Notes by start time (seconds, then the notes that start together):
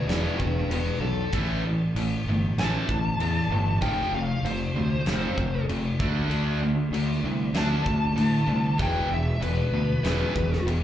0.07 E1 E2 B2 E3 B4 D5, snare, crash
0.38 E1 E2 B2 D4 B4, kick
0.69 E1 E2 B2 D4 B4, crash
1.00 B1 E2 B2 A4
1.32 A1 A2 E3 A3, kick, crash
1.65 A2 E3
1.95 A1 A2 E3, crash
2.25 G1 A2
2.29 E3
2.56 A1 A2 E3 A5, snare, crash
2.60 A3
2.89 A1 A2 E3, kick
3.18 E2 A2 E3, crash
3.49 G1 A2 E3
3.81 F1 F2 C3 F3 G5, kick, crash
4.11 F1 F2 C3 F5
4.43 F1 F2 C3 C5, crash
4.74 D2 F2 C3
5.06 F1 F2 C3 F3, snare, crash
5.37 F1 F2 C3, kick
5.68 F1 F2 C3, crash
6.00 D2 D3 A3 D4, kick
6.29 D2 D3 A3 D4, crash
6.63 D3 A3
6.91 D2 D3 A3, crash
7.23 C2 D3 A3
7.53 D2 D3 A3 D4, snare, crash
7.57 A5
7.85 D2 D3 A3, kick
8.16 A2 D3 A3, crash
8.46 C2 D3 A3
8.78 E1 E2 B2 E3, kick, crash
8.82 G5
9.09 E1 E2 B2
9.13 E5
9.40 E1 E2 B2 B4, crash
9.71 D2 E2 B2
10.03 E1 E2 B2 E3, snare, crash
10.35 E1 E2 B2, kick
10.53 snare
10.65 E1 E2 B2, crash